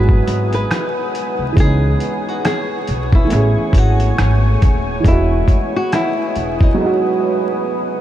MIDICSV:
0, 0, Header, 1, 7, 480
1, 0, Start_track
1, 0, Key_signature, 4, "minor"
1, 0, Tempo, 869565
1, 868, Time_signature, 4, 2, 24, 8
1, 4420, End_track
2, 0, Start_track
2, 0, Title_t, "Ambient pad"
2, 0, Program_c, 0, 92
2, 0, Note_on_c, 0, 71, 75
2, 0, Note_on_c, 0, 78, 72
2, 0, Note_on_c, 0, 80, 73
2, 0, Note_on_c, 0, 87, 82
2, 847, Note_off_c, 0, 80, 0
2, 852, Note_off_c, 0, 87, 0
2, 863, Note_off_c, 0, 78, 0
2, 870, Note_on_c, 0, 85, 84
2, 874, Note_on_c, 0, 80, 64
2, 875, Note_on_c, 0, 73, 72
2, 1808, Note_off_c, 0, 71, 0
2, 1830, Note_on_c, 0, 57, 83
2, 2770, Note_off_c, 0, 85, 0
2, 2780, Note_off_c, 0, 57, 0
2, 2785, Note_on_c, 0, 87, 72
2, 2788, Note_on_c, 0, 71, 84
2, 3729, Note_off_c, 0, 80, 0
2, 3730, Note_off_c, 0, 73, 0
2, 3749, Note_on_c, 0, 78, 67
2, 3750, Note_on_c, 0, 80, 71
2, 4420, Note_off_c, 0, 71, 0
2, 4420, Note_off_c, 0, 78, 0
2, 4420, Note_off_c, 0, 80, 0
2, 4420, Note_off_c, 0, 87, 0
2, 4420, End_track
3, 0, Start_track
3, 0, Title_t, "Nylon-string guitar"
3, 0, Program_c, 1, 24
3, 0, Note_on_c, 1, 71, 75
3, 274, Note_off_c, 1, 71, 0
3, 300, Note_on_c, 1, 71, 67
3, 853, Note_off_c, 1, 71, 0
3, 884, Note_on_c, 1, 68, 86
3, 1261, Note_off_c, 1, 68, 0
3, 1261, Note_on_c, 1, 66, 84
3, 1347, Note_off_c, 1, 66, 0
3, 1360, Note_on_c, 1, 68, 86
3, 1709, Note_off_c, 1, 68, 0
3, 1737, Note_on_c, 1, 64, 68
3, 2084, Note_off_c, 1, 64, 0
3, 2084, Note_on_c, 1, 66, 76
3, 2774, Note_off_c, 1, 66, 0
3, 2803, Note_on_c, 1, 64, 87
3, 3151, Note_off_c, 1, 64, 0
3, 3182, Note_on_c, 1, 66, 84
3, 3267, Note_off_c, 1, 66, 0
3, 3281, Note_on_c, 1, 64, 88
3, 3657, Note_off_c, 1, 64, 0
3, 3657, Note_on_c, 1, 63, 61
3, 3869, Note_off_c, 1, 63, 0
3, 4420, End_track
4, 0, Start_track
4, 0, Title_t, "Upright piano"
4, 0, Program_c, 2, 0
4, 0, Note_on_c, 2, 54, 70
4, 0, Note_on_c, 2, 56, 66
4, 0, Note_on_c, 2, 59, 72
4, 0, Note_on_c, 2, 63, 69
4, 0, Note_on_c, 2, 66, 97
4, 3, Control_c, 2, 64, 127
4, 835, Note_off_c, 2, 54, 0
4, 842, Note_on_c, 2, 52, 54
4, 844, Note_off_c, 2, 56, 0
4, 852, Note_off_c, 2, 59, 0
4, 856, Note_on_c, 2, 56, 54
4, 860, Note_off_c, 2, 63, 0
4, 867, Note_off_c, 2, 66, 0
4, 872, Note_on_c, 2, 59, 57
4, 876, Control_c, 2, 64, 0
4, 888, Note_on_c, 2, 61, 56
4, 904, Note_on_c, 2, 63, 70
4, 971, Control_c, 2, 64, 127
4, 1784, Note_off_c, 2, 52, 0
4, 1792, Note_on_c, 2, 52, 73
4, 1803, Note_off_c, 2, 56, 0
4, 1806, Note_on_c, 2, 57, 53
4, 1811, Note_off_c, 2, 59, 0
4, 1819, Note_off_c, 2, 61, 0
4, 1822, Note_on_c, 2, 59, 56
4, 1828, Note_off_c, 2, 63, 0
4, 1835, Control_c, 2, 64, 0
4, 1839, Note_on_c, 2, 61, 64
4, 1853, Note_on_c, 2, 68, 78
4, 1931, Control_c, 2, 64, 127
4, 2751, Note_off_c, 2, 52, 0
4, 2758, Note_off_c, 2, 57, 0
4, 2761, Note_on_c, 2, 52, 60
4, 2766, Note_off_c, 2, 59, 0
4, 2774, Note_off_c, 2, 61, 0
4, 2776, Note_on_c, 2, 56, 55
4, 2782, Note_off_c, 2, 68, 0
4, 2794, Note_on_c, 2, 59, 59
4, 2795, Control_c, 2, 64, 0
4, 2807, Note_on_c, 2, 75, 62
4, 2825, Note_on_c, 2, 66, 75
4, 2903, Control_c, 2, 64, 127
4, 3715, Note_off_c, 2, 52, 0
4, 3722, Note_on_c, 2, 54, 70
4, 3723, Note_off_c, 2, 56, 0
4, 3732, Note_off_c, 2, 59, 0
4, 3739, Note_off_c, 2, 75, 0
4, 3739, Note_on_c, 2, 56, 62
4, 3748, Note_off_c, 2, 66, 0
4, 3754, Control_c, 2, 64, 0
4, 3754, Note_on_c, 2, 59, 62
4, 3769, Note_on_c, 2, 63, 65
4, 3786, Note_on_c, 2, 66, 76
4, 3860, Control_c, 2, 64, 127
4, 4420, Note_off_c, 2, 54, 0
4, 4420, Note_off_c, 2, 56, 0
4, 4420, Note_off_c, 2, 59, 0
4, 4420, Note_off_c, 2, 63, 0
4, 4420, Note_off_c, 2, 66, 0
4, 4420, End_track
5, 0, Start_track
5, 0, Title_t, "Upright bass"
5, 0, Program_c, 3, 32
5, 0, Note_on_c, 3, 32, 103
5, 110, Note_off_c, 3, 32, 0
5, 154, Note_on_c, 3, 32, 88
5, 349, Note_off_c, 3, 32, 0
5, 768, Note_on_c, 3, 36, 73
5, 852, Note_off_c, 3, 36, 0
5, 867, Note_on_c, 3, 37, 97
5, 1065, Note_off_c, 3, 37, 0
5, 1593, Note_on_c, 3, 35, 91
5, 1789, Note_off_c, 3, 35, 0
5, 1835, Note_on_c, 3, 33, 115
5, 1946, Note_off_c, 3, 33, 0
5, 2062, Note_on_c, 3, 32, 90
5, 2263, Note_off_c, 3, 32, 0
5, 2317, Note_on_c, 3, 32, 109
5, 2511, Note_off_c, 3, 32, 0
5, 2555, Note_on_c, 3, 27, 93
5, 2750, Note_off_c, 3, 27, 0
5, 2788, Note_on_c, 3, 28, 106
5, 2986, Note_off_c, 3, 28, 0
5, 3512, Note_on_c, 3, 28, 75
5, 3708, Note_off_c, 3, 28, 0
5, 4420, End_track
6, 0, Start_track
6, 0, Title_t, "Muted upright bass strokes"
6, 1971, Note_on_c, 9, 29, 41
6, 2027, Note_off_c, 9, 29, 0
6, 4420, End_track
7, 0, Start_track
7, 0, Title_t, "Drums"
7, 49, Note_on_c, 9, 36, 83
7, 104, Note_off_c, 9, 36, 0
7, 152, Note_on_c, 9, 42, 69
7, 207, Note_off_c, 9, 42, 0
7, 290, Note_on_c, 9, 42, 43
7, 345, Note_off_c, 9, 42, 0
7, 390, Note_on_c, 9, 26, 68
7, 393, Note_on_c, 9, 37, 122
7, 395, Note_on_c, 9, 42, 68
7, 445, Note_off_c, 9, 26, 0
7, 448, Note_off_c, 9, 37, 0
7, 450, Note_off_c, 9, 42, 0
7, 634, Note_on_c, 9, 42, 69
7, 689, Note_off_c, 9, 42, 0
7, 866, Note_on_c, 9, 36, 127
7, 872, Note_on_c, 9, 42, 78
7, 921, Note_off_c, 9, 36, 0
7, 927, Note_off_c, 9, 42, 0
7, 1106, Note_on_c, 9, 42, 64
7, 1162, Note_off_c, 9, 42, 0
7, 1351, Note_on_c, 9, 42, 89
7, 1352, Note_on_c, 9, 26, 59
7, 1354, Note_on_c, 9, 37, 127
7, 1406, Note_off_c, 9, 42, 0
7, 1407, Note_off_c, 9, 26, 0
7, 1409, Note_off_c, 9, 37, 0
7, 1587, Note_on_c, 9, 42, 61
7, 1642, Note_off_c, 9, 42, 0
7, 1725, Note_on_c, 9, 36, 100
7, 1780, Note_off_c, 9, 36, 0
7, 1824, Note_on_c, 9, 42, 80
7, 1879, Note_off_c, 9, 42, 0
7, 2059, Note_on_c, 9, 36, 75
7, 2067, Note_on_c, 9, 42, 75
7, 2114, Note_off_c, 9, 36, 0
7, 2122, Note_off_c, 9, 42, 0
7, 2207, Note_on_c, 9, 42, 40
7, 2262, Note_off_c, 9, 42, 0
7, 2310, Note_on_c, 9, 26, 66
7, 2310, Note_on_c, 9, 37, 115
7, 2312, Note_on_c, 9, 42, 55
7, 2365, Note_off_c, 9, 26, 0
7, 2365, Note_off_c, 9, 37, 0
7, 2367, Note_off_c, 9, 42, 0
7, 2550, Note_on_c, 9, 42, 62
7, 2552, Note_on_c, 9, 36, 99
7, 2606, Note_off_c, 9, 42, 0
7, 2607, Note_off_c, 9, 36, 0
7, 2785, Note_on_c, 9, 36, 118
7, 2791, Note_on_c, 9, 42, 86
7, 2840, Note_off_c, 9, 36, 0
7, 2846, Note_off_c, 9, 42, 0
7, 3024, Note_on_c, 9, 36, 80
7, 3027, Note_on_c, 9, 42, 55
7, 3079, Note_off_c, 9, 36, 0
7, 3082, Note_off_c, 9, 42, 0
7, 3270, Note_on_c, 9, 42, 97
7, 3273, Note_on_c, 9, 37, 113
7, 3276, Note_on_c, 9, 26, 68
7, 3326, Note_off_c, 9, 42, 0
7, 3328, Note_off_c, 9, 37, 0
7, 3331, Note_off_c, 9, 26, 0
7, 3508, Note_on_c, 9, 42, 53
7, 3563, Note_off_c, 9, 42, 0
7, 3646, Note_on_c, 9, 36, 99
7, 3701, Note_off_c, 9, 36, 0
7, 4420, End_track
0, 0, End_of_file